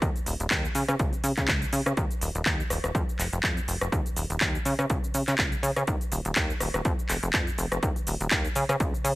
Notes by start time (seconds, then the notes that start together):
0.02 D#2, kick, closed hi-hat, shaker
0.16 D#1, closed hi-hat, shaker
0.26 D#1, open hi-hat, shaker
0.40 D#1, closed hi-hat, shaker
0.51 D#2, kick, clap, closed hi-hat, shaker
0.65 shaker
0.75 C#3, open hi-hat, shaker
0.88 C#3, cross-stick, closed hi-hat, shaker
0.99 C#2, kick, closed hi-hat, shaker
1.13 C#3, closed hi-hat, shaker
1.24 C#3, open hi-hat, shaker
1.37 C#3, kick, clap, closed hi-hat, shaker
1.48 C#2, kick, clap, closed hi-hat, shaker
1.62 closed hi-hat, shaker
1.73 C#3, open hi-hat, shaker
1.86 C#3, cross-stick, closed hi-hat, shaker
1.97 D#2, kick, closed hi-hat, shaker
2.11 closed hi-hat, shaker
2.21 D#1, open hi-hat, shaker
2.35 D#1, closed hi-hat, shaker
2.46 D#2, kick, clap, closed hi-hat, shaker
2.60 shaker
2.70 D#1, cross-stick, open hi-hat, shaker
2.84 D#1, cross-stick, closed hi-hat, shaker
2.95 F2, kick, closed hi-hat, shaker
3.09 shaker
3.19 F1, clap, open hi-hat, shaker
3.33 F1, closed hi-hat, shaker
3.43 F2, kick, clap, closed hi-hat, shaker
3.57 closed hi-hat, shaker
3.68 F1, open hi-hat, shaker
3.81 F1, cross-stick, closed hi-hat, shaker
3.92 D#2, kick, closed hi-hat, shaker
4.06 D#1, closed hi-hat, shaker
4.16 D#1, open hi-hat, shaker
4.30 D#1, closed hi-hat, shaker
4.41 D#2, kick, clap, closed hi-hat, shaker
4.55 shaker
4.65 C#3, open hi-hat, shaker
4.79 C#3, cross-stick, closed hi-hat, shaker
4.90 C#2, kick, closed hi-hat, shaker
5.04 C#3, shaker
5.14 C#3, open hi-hat, shaker
5.28 C#3, clap, closed hi-hat, shaker
5.38 C#2, kick, clap, closed hi-hat, shaker
5.52 closed hi-hat, shaker
5.63 C#3, open hi-hat, shaker
5.76 C#3, cross-stick, closed hi-hat, shaker
5.87 D#2, kick, closed hi-hat, shaker
6.01 closed hi-hat, shaker
6.12 D#1, open hi-hat, shaker
6.25 D#1, closed hi-hat, shaker
6.36 D#2, kick, clap, closed hi-hat, shaker
6.50 shaker
6.60 D#1, cross-stick, open hi-hat, shaker
6.74 D#1, cross-stick, closed hi-hat, shaker
6.85 F2, kick, closed hi-hat, shaker
6.99 shaker
7.09 F1, clap, open hi-hat, shaker
7.23 F1, closed hi-hat, shaker
7.33 F2, kick, clap, closed hi-hat, shaker
7.47 closed hi-hat, shaker
7.58 F1, open hi-hat, shaker
7.72 F1, cross-stick, closed hi-hat, shaker
7.83 D#2, kick, closed hi-hat, shaker
7.96 D#1, closed hi-hat, shaker
8.07 D#1, open hi-hat, shaker
8.21 D#1, closed hi-hat, shaker
8.31 kick, clap, closed hi-hat, shaker
8.45 closed hi-hat, shaker
8.55 C#3, open hi-hat, shaker
8.69 C#3, cross-stick, closed hi-hat, shaker
8.80 C#2, kick, closed hi-hat, shaker
8.94 C#3, shaker
9.04 C#3, open hi-hat, shaker